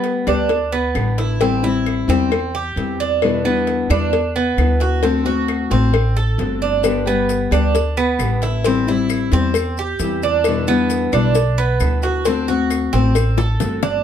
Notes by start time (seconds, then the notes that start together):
Already playing: G3 B3 G4
0.04 cowbell
0.27 D2 G3 B3 D4 G4, cowbell, claves
0.49 muted nylon-string guitar stroke, cowbell
0.72 B3
0.94 A1 D3 G3 B3 G4, cowbell, claves
1.18 E4, cowbell
1.40 E3 G3 C4 E4, cowbell
1.62 G3 C4 E4
1.86 cowbell, claves
2.08 E2 G3 C4 E4, cowbell
2.31 muted nylon-string guitar stroke, cowbell, claves
2.55 G4
2.76 E2 E3 G3 C4 E4, cowbell
3.00 D4
3.22 B2 D3 G3 B3 E4, cowbell, claves
3.44 D3 G3 B3 E4
3.67 cowbell
3.90 E2 D3 G3 B3 D4 E4, cowbell, claves
4.12 muted nylon-string guitar stroke, cowbell
4.36 B3
4.57 D2 D3 G3 B3 E4, cowbell, claves
4.80 F#4, cowbell
5.02 D3 A3 C4 F#4, cowbell
5.25 A3 C4 F#4
5.48 cowbell, claves
5.70 A1 A3 C4 F#4, cowbell
5.93 muted nylon-string guitar stroke, cowbell, claves
6.17 A4
6.38 G1 D3 A3 C4 F#4, cowbell
6.62 D4
6.83 D3 G3 B3 G4, cowbell, claves, maracas
7.06 G3 B3 G4, maracas
7.29 cowbell, maracas
7.51 D2 G3 B3 D4 G4, cowbell, claves, maracas
7.74 muted nylon-string guitar stroke, cowbell, maracas
7.97 B3, maracas
8.19 A1 D3 G3 B3 G4, cowbell, claves, maracas
8.42 E4, cowbell, maracas
8.64 E3 G3 C4 E4, cowbell, maracas
8.87 G3 C4 E4, maracas
9.09 cowbell, claves, maracas
9.31 E2 G3 C4 E4, cowbell, maracas
9.54 muted nylon-string guitar stroke, cowbell, claves, maracas
9.77 G4, maracas
9.99 E2 E3 G3 C4 E4, cowbell, maracas
10.22 D4, maracas
10.44 B2 D3 G3 B3 E4, cowbell, claves, maracas
10.67 D3 G3 B3 E4, maracas
10.90 cowbell, maracas
11.12 B1 D3 G3 B3 D4 E4, cowbell, claves, maracas
11.35 muted nylon-string guitar stroke, cowbell, maracas
11.57 B3, maracas
11.80 D2 D3 G3 B3 E4, cowbell, claves, maracas
12.02 F#4, cowbell, maracas
12.25 D3 A3 C4 F#4, cowbell, maracas
12.48 A3 C4 F#4, maracas
12.70 cowbell, claves, maracas
12.93 A1 A3 C4 F#4, cowbell, maracas
13.15 muted nylon-string guitar stroke, cowbell, claves, maracas
13.37 A4, high bongo, maracas
13.60 G1 D3 A3 C4 F#4, cowbell, low bongo, maracas
13.83 D4, low bongo, maracas